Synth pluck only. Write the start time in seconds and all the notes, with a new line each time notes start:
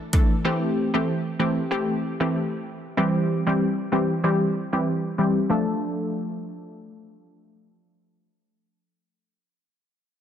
0.13 E3 A3 D4 A4
0.45 E3 A3 C4 G4
0.94 E3 A3 C4 G4
1.39 E3 A3 C4 G4
1.71 E3 A3 C4 G4
2.20 E3 A3 C4 G4
2.97 E3 G3 C4 G4
3.47 E3 G3 C4 G4
3.92 E3 G3 C4 G4
4.24 E3 G3 C4 G4
4.73 E3 G3 C4 G4
5.18 E3 G3 C4 G4
5.49 F3 A3 D4 A4